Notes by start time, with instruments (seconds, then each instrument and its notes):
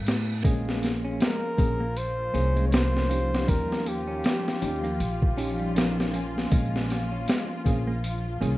Already playing: reverse cymbal
0.07 upright bass A2, snare, open hi-hat
0.43 upright bass A#1, string section F3 F4, clean electric guitar G#3, tine electric piano A#3 C#4 G#4, kick, open hi-hat
0.69 snare
0.82 clean electric guitar A#3, snare, open hi-hat
1.04 clean electric guitar C#4
1.20 clean electric guitar G#3, muted trumpet A#4, snare, open hi-hat
1.57 upright bass A#1, tine electric piano A#3 C#4 G#4, kick, open hi-hat
1.80 clean electric guitar A#3
1.96 muted trumpet C5, open hi-hat
2.33 upright bass C2, tine electric piano A#3 C#4 G#4, clean electric guitar C#4, open hi-hat
2.56 clean electric guitar G#3, closed hi-hat
2.67 tine electric piano A#3, muted trumpet C#5
2.72 tine electric piano C#4 A#4, muted trumpet C5, snare, open hi-hat
2.97 snare
3.08 clean electric guitar A#3, tine electric piano C#4 D#4 G4, open hi-hat
3.35 snare
3.48 upright bass D#2, clean electric guitar G3, muted trumpet A#4, kick, open hi-hat
3.72 snare
3.85 clean electric guitar A#3, muted trumpet G4, open hi-hat
4.08 clean electric guitar C#4
4.24 clean electric guitar G3, snare, open hi-hat
4.48 snare
4.61 upright bass D#2, tine electric piano C#4 D#4 G4, open hi-hat
4.84 clean electric guitar A#3, closed hi-hat
5.00 upright bass A#1, open hi-hat
5.22 kick
5.37 tine electric piano C#4 D#4 G4, clean electric guitar C#4, open hi-hat
5.59 clean electric guitar G3
5.75 tine electric piano C#4 D#4 A#4, snare, open hi-hat
6.00 snare
6.12 tine electric piano A#3 C#4 G#5, clean electric guitar A#3, open hi-hat
6.38 snare
6.51 upright bass A#1, clean electric guitar G#3, kick, open hi-hat
6.76 snare
6.89 clean electric guitar A#3, snare, open hi-hat
7.12 clean electric guitar C#4
7.27 clean electric guitar G#3, snare, open hi-hat
7.65 upright bass A#1, tine electric piano A#3 C#4 G#4, kick, open hi-hat
7.87 clean electric guitar A#3
8.04 open hi-hat
8.41 upright bass C2, tine electric piano A#3 C#4 G#4, clean electric guitar C#4, open hi-hat